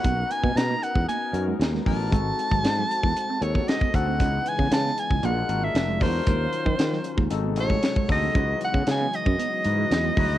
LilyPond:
<<
  \new Staff \with { instrumentName = "Soprano saxophone" } { \time 4/4 \key cis \minor \tempo 4 = 116 fis''8 gis''8 ais''8 fis''8 gis''8. r8. a''8~ | a''2~ a''8 cis''8 dis''8 fis''8~ | fis''8 gis''8 a''8 gis''8 fis''8. e''8. bis'8~ | bis'2 r8 cis''4 dis''8~ |
dis''8 fis''8 gis''8 dis''2~ dis''8 | }
  \new Staff \with { instrumentName = "Tine electric piano" } { \time 4/4 \key cis \minor <b cis' dis' fis' ais'>4. r4 <b cis' dis' fis' ais'>8 r8 <b cis' dis' fis' ais'>8 | <gis bis dis' fis' a'>4. r4 <gis bis dis' fis' a'>8 r8 <gis bis dis' fis' a'>8 | <gis cis' dis' e' b'>4. r8 <gis d' eis' fis' ais'>8 <gis d' eis' fis' ais'>8 r8 <gis d' eis' fis' ais'>8 | <eis fis cis' dis' eis' ais'>4. r8 <gis bis dis' fis' a'>8 <bis, gis dis' fis' a'>8 r8 <gis bis dis' fis' a'>8 |
<gis dis' e' fis' b'>4. r4 <gis dis' e' fis' b'>8 r8 <gis dis' e' fis' b'>8 | }
  \new Staff \with { instrumentName = "Analog synth pad" } { \time 4/4 \key cis \minor << { dis'1 | fis'1 | e2 d'2 | fis1~ |
fis1 | } \\ { <b ais'>1 | <gis bis>1 | <cis gis b>2 <gis ais>2 | <dis cis' eis'>2 <bis, gis>2 |
<cis e b dis''>1 | } >> }
  \new Staff \with { instrumentName = "Clean electric guitar" } { \time 4/4 \key cis \minor b16 r8 ais16 r16 ais16 r16 b16 ais16 r8 gis16 r16 gis16 fis16 r16 | gis16 r8 fis16 r16 fis16 r16 gis16 r16 bis16 r16 b16 r16 b16 r16 bis16 | cis'16 r8 b16 r16 b16 r16 cis'16 ais16 r8 gis16 r16 gis16 fis16 r16 | gis16 r8 fis16 r16 fis16 r16 gis16 r16 b16 r16 gis16 r16 gis16 r16 bis16 |
cis'16 r8 b16 r16 b16 r16 cis'16 b16 r8 gis16 r16 gis16 fis16 r16 | }
  \new Staff \with { instrumentName = "Fretless electric bass" } { \clef bass \time 4/4 \key cis \minor b,,8 r16 b,16 b,8 r16 e,16 r8 fis,8 dis,8 a,,8 | gis,,8 r16 gis,,16 gis,8 r16 e,16 r8 dis,8 r8 d,8 | cis,8 r16 cis16 cis8 r16 cis,16 ais,,8 gis,,8 eis,,8 e,8 | dis,8 r16 dis16 dis8 r16 dis,16 gis,,8 a,,8 r8 d,8 |
cis,8 r16 cis16 cis8 r16 fis,16 r8 gis,8 e,8 d,8 | }
  \new DrumStaff \with { instrumentName = "Drums" } \drummode { \time 4/4 <hh bd>8 hh16 bd16 <hh sn>8 hh16 bd16 hh8 hh8 <hh sn>16 sn16 <hho bd>8 | <hh bd>8 hh16 bd16 <hh sn>8 hh16 bd16 hh8 hh16 bd16 <hh sn>16 bd16 <hh bd>8 | <hh bd>8 hh16 bd16 <hh sn>16 sn16 hh16 bd16 hh8 hh8 <hh sn>8 <hho bd>8 | <hh bd>8 hh16 bd16 <hh sn>16 sn16 hh16 bd16 hh8 hh16 bd16 <hh sn>16 bd16 <hho bd>8 |
<hh bd>8 hh16 bd16 <hh sn>8 hh16 bd16 hh8 hh8 <hh sn>8 <hho bd>8 | }
>>